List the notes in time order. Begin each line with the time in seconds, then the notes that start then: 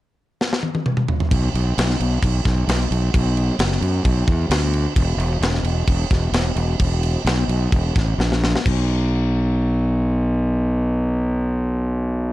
0.41 snare
0.53 snare
0.63 high tom
0.75 high tom
0.86 mid tom
0.97 mid tom
1.08 floor tom
1.20 floor tom
1.31 B1, kick, crash
1.54 B1, crash
1.78 B1, snare, crash
1.90 snare
2.00 B1, crash
2.23 B1, kick, crash
2.45 B1, kick, snare, crash
2.68 B1, snare, crash
2.91 B1, crash
3.14 B1, kick, crash
3.37 crash
3.59 F#1, snare, crash
3.71 snare
3.81 F#2, crash
4.05 B1, kick, crash
4.28 E2, kick, crash
4.50 D2, snare, crash
4.74 crash
4.96 E1, kick, crash
5.17 E1, crash
5.41 E1, snare, crash
5.54 snare
5.63 E1, crash
5.87 E1, kick, crash
6.11 E1, kick, snare, crash
6.32 E1, snare, crash
6.56 E1, crash
6.80 E1, kick, crash
7.03 crash
7.25 B1, snare, crash
7.48 B1, crash
7.72 E1, kick, crash
7.96 A1, kick, snare, crash
8.18 A#1, snare
8.32 snare
8.44 snare
8.56 snare
8.66 B1, kick, crash